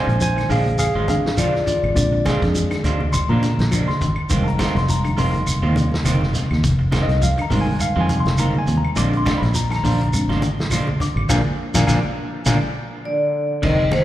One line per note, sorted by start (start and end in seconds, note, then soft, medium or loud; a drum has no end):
0.00 0.46 G#3 medium
0.00 0.46 C4 soft
0.00 0.47 D4 medium
0.00 0.19 C5 medium
0.00 0.20 G#5 loud
0.07 0.45 A#1 loud
0.07 muted clean electric guitar stroke soft
0.07 closed hi-hat soft
0.21 0.34 F3 medium
0.21 0.48 C5 medium
0.21 0.50 G#5 loud
0.21 closed hi-hat medium
0.21 shekere medium
0.36 0.47 D#3 medium
0.36 muted clean electric guitar stroke soft
0.36 snare soft
0.36 closed hi-hat soft
0.36 claves medium
0.49 0.90 A#1 medium
0.49 0.73 D3 medium
0.49 0.66 F3 medium
0.49 0.65 G#3 medium
0.49 0.65 D4 medium
0.49 0.77 G#4 medium
0.49 0.78 F5 loud
0.49 muted clean electric guitar stroke medium
0.49 open hi-hat medium
0.49 low conga medium
0.49 shekere soft
0.66 muted clean electric guitar stroke soft
0.66 closed hi-hat soft
0.66 high conga medium
0.78 1.06 G#4 loud
0.78 1.08 F5 loud
0.78 muted clean electric guitar stroke soft
0.78 closed hi-hat medium
0.78 claves medium
0.78 shekere medium
0.95 1.37 G#1 medium
0.95 1.07 F3 medium
0.95 1.07 G#3 medium
0.95 1.08 F4 medium
0.95 muted clean electric guitar stroke medium
1.08 1.32 D3 medium
1.08 1.35 G#3 soft
1.08 1.35 C4 soft
1.08 1.35 D4 medium
1.08 1.36 G#4 medium
1.08 1.38 F5 medium
1.08 muted clean electric guitar stroke soft
1.08 closed hi-hat medium
1.08 high conga medium
1.08 low conga medium
1.08 shekere soft
1.26 snare medium
1.37 1.64 A#1 medium
1.37 1.61 F3 medium
1.37 1.54 F3 medium
1.37 1.54 G#3 medium
1.37 1.54 D4 medium
1.37 1.65 F4 medium
1.37 1.53 F4 medium
1.37 1.66 D5 medium
1.37 closed hi-hat medium
1.37 high conga medium
1.37 claves medium
1.37 shekere medium
1.54 muted clean electric guitar stroke soft
1.54 snare soft
1.66 1.90 D3 medium
1.66 1.94 F4 medium
1.66 1.95 D5 medium
1.66 muted clean electric guitar stroke soft
1.66 closed hi-hat medium
1.66 low conga medium
1.66 shekere soft
1.83 1.95 G#1 medium
1.83 claves medium
1.94 2.37 A#1 loud
1.94 2.20 D3 medium
1.94 2.79 G#3 medium
1.94 2.80 C4 soft
1.94 2.80 D4 medium
1.94 2.23 F4 medium
1.94 2.25 D5 medium
1.94 kick loud
1.94 closed hi-hat medium
1.94 shekere medium
2.12 muted clean electric guitar stroke soft
2.25 2.42 F3 medium
2.25 2.41 G#3 medium
2.25 2.41 D4 medium
2.25 2.41 F4 medium
2.25 2.83 G#4 medium
2.25 kick medium
2.25 snare medium
2.25 closed hi-hat medium
2.25 high conga loud
2.25 claves medium
2.25 shekere soft
2.42 2.68 F2 medium
2.42 muted clean electric guitar stroke soft
2.42 kick medium
2.42 snare soft
2.42 closed hi-hat soft
2.55 2.68 F3 medium
2.55 closed hi-hat medium
2.55 low conga medium
2.55 shekere medium
2.71 2.82 D#3 medium
2.71 muted clean electric guitar stroke soft
2.71 snare soft
2.71 closed hi-hat soft
2.71 claves medium
2.84 3.25 D2 medium
2.84 3.07 D3 medium
2.84 3.00 F3 medium
2.84 3.00 G#3 medium
2.84 3.00 D4 medium
2.84 3.00 F4 medium
2.84 closed hi-hat medium
2.84 low conga medium
2.84 shekere soft
3.00 muted clean electric guitar stroke soft
3.00 high conga medium
3.13 3.28 C6 loud
3.13 muted clean electric guitar stroke soft
3.13 kick medium
3.13 closed hi-hat medium
3.13 claves medium
3.13 shekere medium
3.29 3.60 A#2 medium
3.29 3.40 F3 medium
3.29 3.42 F3 medium
3.29 3.42 G#3 medium
3.29 3.43 D4 medium
3.29 3.43 F4 medium
3.29 3.86 A#5 medium
3.29 high conga medium
3.42 3.66 D3 medium
3.42 muted clean electric guitar stroke soft
3.42 snare soft
3.42 closed hi-hat soft
3.42 high conga medium
3.42 shekere soft
3.59 3.85 A#1 medium
3.59 snare medium
3.59 closed hi-hat soft
3.71 3.95 F3 medium
3.71 3.88 F3 medium
3.71 3.88 G#3 medium
3.71 3.88 D4 medium
3.71 muted clean electric guitar stroke medium
3.71 closed hi-hat medium
3.71 high conga medium
3.71 claves medium
3.71 shekere medium
3.88 4.45 C6 medium
3.88 muted clean electric guitar stroke medium
3.88 snare soft
3.88 high conga medium
4.01 4.16 G#1 medium
4.01 4.24 D3 medium
4.01 muted clean electric guitar stroke soft
4.01 kick medium
4.01 closed hi-hat medium
4.01 low conga medium
4.01 shekere soft
4.16 claves medium
4.30 4.57 F1 medium
4.30 4.46 D#3 medium
4.30 4.53 D#3 medium
4.30 6.60 G3 soft
4.30 4.45 G#3 medium
4.30 6.60 G#3 soft
4.30 4.45 C4 medium
4.30 6.60 D#4 medium
4.30 4.45 F4 medium
4.30 kick medium
4.30 closed hi-hat medium
4.30 shekere medium
4.44 4.47 A5 medium
4.44 muted clean electric guitar stroke soft
4.44 closed hi-hat soft
4.48 4.76 A#5 medium
4.59 4.75 D#3 medium
4.59 4.75 G#3 medium
4.59 4.75 C4 medium
4.59 4.74 F4 medium
4.59 kick medium
4.59 snare medium
4.59 closed hi-hat medium
4.59 high conga loud
4.59 claves medium
4.59 shekere soft
4.75 5.13 F1 loud
4.75 4.89 C6 loud
4.75 muted clean electric guitar stroke soft
4.75 snare soft
4.75 closed hi-hat soft
4.88 5.02 F3 medium
4.88 5.18 A#5 loud
4.88 closed hi-hat medium
4.88 shekere medium
5.04 5.15 D3 medium
5.04 muted clean electric guitar stroke soft
5.04 closed hi-hat soft
5.04 claves medium
5.17 5.59 F1 medium
5.17 5.41 C3 medium
5.17 5.34 D#3 medium
5.17 5.33 G#3 medium
5.17 5.32 C4 medium
5.17 5.32 F4 medium
5.17 6.32 C6 loud
5.17 open hi-hat medium
5.17 low conga medium
5.17 shekere soft
5.33 muted clean electric guitar stroke soft
5.33 closed hi-hat soft
5.33 high conga medium
5.46 muted clean electric guitar stroke soft
5.46 closed hi-hat medium
5.46 claves medium
5.46 shekere medium
5.62 6.06 D#2 medium
5.62 5.75 D#3 soft
5.62 5.74 D#3 medium
5.62 5.75 G#3 medium
5.62 5.75 C4 medium
5.62 5.75 F4 medium
5.62 high conga medium
5.76 6.00 C3 medium
5.76 muted clean electric guitar stroke soft
5.76 closed hi-hat medium
5.76 high conga medium
5.76 shekere soft
5.92 snare medium
5.92 high conga medium
6.04 6.31 F1 medium
6.04 6.22 D#3 medium
6.04 6.29 D#3 medium
6.04 6.21 G#3 medium
6.04 6.20 C4 medium
6.04 6.20 F4 medium
6.04 closed hi-hat medium
6.04 high conga medium
6.04 claves medium
6.04 shekere medium
6.21 muted clean electric guitar stroke medium
6.21 snare soft
6.21 high conga medium
6.33 6.58 C3 medium
6.33 muted clean electric guitar stroke soft
6.33 snare soft
6.33 closed hi-hat medium
6.33 low conga medium
6.33 shekere soft
6.51 6.63 D#2 medium
6.51 snare soft
6.51 claves medium
6.64 7.04 F1 loud
6.64 6.87 C3 medium
6.64 kick medium
6.64 snare soft
6.64 closed hi-hat medium
6.64 shekere medium
6.79 muted clean electric guitar stroke soft
6.91 7.09 D#3 medium
6.91 7.07 G#3 medium
6.91 7.07 C4 medium
6.91 7.07 F4 medium
6.91 kick medium
6.91 snare medium
6.91 closed hi-hat medium
6.91 high conga medium
6.91 claves medium
6.91 shekere soft
7.03 7.22 D#5 loud
7.08 7.35 C2 medium
7.08 muted clean electric guitar stroke soft
7.08 snare soft
7.08 closed hi-hat soft
7.21 7.35 F3 medium
7.21 7.42 F5 loud
7.21 closed hi-hat medium
7.21 low conga medium
7.21 shekere medium
7.38 7.48 D3 medium
7.38 7.61 A#5 medium
7.38 muted clean electric guitar stroke soft
7.38 closed hi-hat soft
7.38 claves medium
7.50 7.92 G#1 medium
7.50 7.74 C3 medium
7.50 7.67 D#3 medium
7.50 8.93 G3 medium
7.50 7.66 G#3 medium
7.50 8.94 G#3 medium
7.50 7.65 C4 medium
7.50 8.94 D#4 medium
7.50 7.65 F4 medium
7.50 open hi-hat medium
7.50 low conga medium
7.50 shekere soft
7.61 7.80 G#5 loud
7.66 muted clean electric guitar stroke soft
7.66 high conga medium
7.79 8.00 F5 loud
7.79 muted clean electric guitar stroke soft
7.79 closed hi-hat medium
7.79 claves medium
7.79 shekere medium
7.96 8.27 F2 loud
7.96 8.08 D#3 medium
7.96 8.07 D#3 medium
7.96 8.08 G#3 medium
7.96 8.08 C4 medium
7.96 8.08 F4 medium
8.01 8.19 G#5 loud
8.09 8.33 C3 medium
8.09 muted clean electric guitar stroke soft
8.09 closed hi-hat medium
8.09 high conga medium
8.09 low conga medium
8.09 shekere soft
8.20 8.39 C6 medium
8.25 8.52 F1 medium
8.25 snare medium
8.25 closed hi-hat soft
8.25 high conga medium
8.38 8.55 D#3 medium
8.38 8.62 D#3 medium
8.38 8.53 G#3 medium
8.38 8.53 C4 medium
8.38 8.53 F4 medium
8.38 8.58 A#5 loud
8.38 closed hi-hat medium
8.38 high conga medium
8.38 claves medium
8.38 shekere medium
8.54 muted clean electric guitar stroke soft
8.54 high conga medium
8.58 8.77 G#5 medium
8.67 8.82 D#2 medium
8.67 8.91 C3 medium
8.67 muted clean electric guitar stroke soft
8.67 closed hi-hat soft
8.67 low conga medium
8.67 shekere soft
8.77 8.96 A#5 medium
8.85 claves medium
8.96 9.23 A#1 medium
8.96 9.20 D3 medium
8.96 9.13 F3 medium
8.96 9.36 G#3 medium
8.96 9.12 G#3 medium
8.96 9.37 C4 medium
8.96 9.12 D4 medium
8.96 9.37 D4 medium
8.96 9.12 F4 medium
8.96 9.16 D6 medium
8.96 kick medium
8.96 snare soft
8.96 closed hi-hat medium
8.96 shekere medium
9.13 muted clean electric guitar stroke soft
9.13 closed hi-hat soft
9.17 9.36 C6 medium
9.25 9.42 F3 medium
9.25 9.41 G#3 medium
9.25 9.41 D4 medium
9.25 9.41 F4 medium
9.25 kick medium
9.25 snare medium
9.25 closed hi-hat medium
9.25 high conga loud
9.25 claves medium
9.25 shekere soft
9.38 9.56 B5 medium
9.42 9.80 A#1 medium
9.42 muted clean electric guitar stroke soft
9.42 snare soft
9.42 closed hi-hat soft
9.54 9.68 F3 medium
9.54 9.74 A#5 medium
9.54 closed hi-hat medium
9.54 shekere medium
9.71 9.81 D#3 medium
9.71 9.75 A5 medium
9.71 muted clean electric guitar stroke soft
9.71 snare soft
9.71 closed hi-hat soft
9.71 claves medium
9.76 10.32 A#5 loud
9.83 10.24 A#1 medium
9.83 10.07 D3 medium
9.83 10.00 F3 medium
9.83 9.99 D4 medium
9.83 9.99 F4 medium
9.83 open hi-hat medium
9.83 low conga medium
9.83 shekere soft
10.00 muted clean electric guitar stroke soft
10.00 closed hi-hat soft
10.00 high conga medium
10.13 10.40 G#3 medium
10.13 10.40 C4 soft
10.13 10.41 D4 medium
10.13 muted clean electric guitar stroke soft
10.13 closed hi-hat medium
10.13 claves medium
10.13 shekere medium
10.28 10.70 G#1 medium
10.28 10.40 F3 medium
10.28 10.42 F3 medium
10.28 10.42 G#3 medium
10.28 10.42 D4 medium
10.28 10.42 F4 medium
10.28 snare soft
10.28 high conga medium
10.41 10.65 D3 medium
10.41 muted clean electric guitar stroke soft
10.41 closed hi-hat soft
10.41 high conga medium
10.41 shekere soft
10.59 snare medium
10.59 high conga medium
10.70 10.97 A#1 medium
10.70 10.88 F3 medium
10.70 10.95 F3 medium
10.70 10.87 G#3 medium
10.70 10.87 D4 medium
10.70 10.87 F4 medium
10.70 closed hi-hat medium
10.70 high conga medium
10.70 claves medium
10.70 shekere medium
10.87 muted clean electric guitar stroke soft
10.87 high conga medium
11.00 11.24 D3 medium
11.00 11.16 D6 medium
11.00 muted clean electric guitar stroke soft
11.00 closed hi-hat medium
11.00 high conga medium
11.00 low conga medium
11.00 shekere soft
11.16 11.28 G#1 medium
11.16 claves medium
11.29 11.42 A#1 medium
11.29 11.40 A#2 loud
11.29 11.40 D3 medium
11.29 11.40 F3 medium
11.29 11.40 G#3 loud
11.29 11.41 A#3 medium
11.29 11.41 D4 medium
11.29 11.40 F5 medium
11.29 11.41 G#5 loud
11.29 11.40 A#5 medium
11.29 kick medium
11.29 snare medium
11.29 high conga loud
11.29 claves loud
11.29 shekere loud
11.74 11.85 A#1 loud
11.74 11.83 A#2 medium
11.74 11.83 D3 loud
11.74 11.83 F3 medium
11.74 11.84 G#3 medium
11.74 11.83 A#3 medium
11.74 11.84 D4 loud
11.74 11.84 F5 loud
11.74 11.84 G#5 loud
11.74 11.84 A#5 loud
11.74 kick medium
11.74 snare medium
11.74 high conga loud
11.74 claves loud
11.74 shekere loud
11.87 12.00 A#1 medium
11.87 11.98 A#2 loud
11.87 11.98 D3 medium
11.87 11.98 F3 medium
11.87 11.99 G#3 medium
11.87 11.99 A#3 medium
11.87 11.99 D4 medium
11.87 11.98 F5 loud
11.87 11.98 G#5 loud
11.87 11.98 A#5 loud
11.87 kick medium
11.87 snare medium
11.87 high conga loud
11.87 claves loud
11.87 shekere medium
12.46 12.58 A#1 medium
12.46 12.57 A#2 loud
12.46 12.57 D3 medium
12.46 12.57 F3 loud
12.46 12.57 G#3 loud
12.46 12.57 A#3 medium
12.46 12.57 D4 loud
12.46 12.57 F5 loud
12.46 12.57 G#5 loud
12.46 12.57 A#5 loud
12.46 kick medium
12.46 snare medium
12.46 high conga loud
12.46 claves medium
12.46 shekere medium
13.05 13.60 D3 medium
13.05 13.59 D5 medium
13.62 14.04 F1 medium
13.62 13.86 D3 medium
13.62 13.82 D#3 medium
13.62 13.78 D#3 medium
13.62 13.82 G#3 medium
13.62 13.82 C4 medium
13.62 13.77 D#5 loud
13.62 muted clean electric guitar stroke medium
13.62 kick medium
13.62 snare soft
13.62 crash medium
13.91 14.04 C3 medium
13.91 14.04 D#3 medium
13.91 14.04 C5 medium
13.91 muted clean electric guitar stroke soft
13.91 snare soft
13.91 ride bell medium
13.91 high conga loud
13.91 claves medium